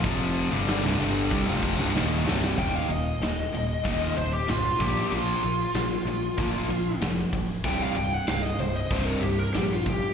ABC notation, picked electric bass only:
X:1
M:4/4
L:1/16
Q:1/4=95
K:Cm
V:1 name="Picked electric bass" clef=bass
F,,,3 G,,,2 C,,, G,,,2 C,, F,,,2 C,,, E,,,2 C,,,2 | E,,,2 E,,,2 E,,,2 E,,,2 E,,,2 E,,,2 C,,,2 B,,,2 | B,,,2 B,,,2 B,,,2 B,,,2 D,,,2 B,,,2 F,,,2 D,,,2 | C,,,2 C,,,2 C,,,2 C,,,2 C,,,2 C,,,2 B,,,4 |]